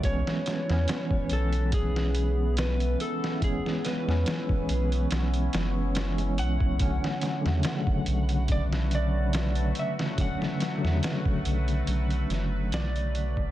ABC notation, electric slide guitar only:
X:1
M:4/4
L:1/8
Q:"Swing 16ths" 1/4=71
K:Bdor
V:1 name="Electric slide guitar"
c3 A G2 B A | G B3 z3 f- | f4 d d2 e | f4 z2 d2 |]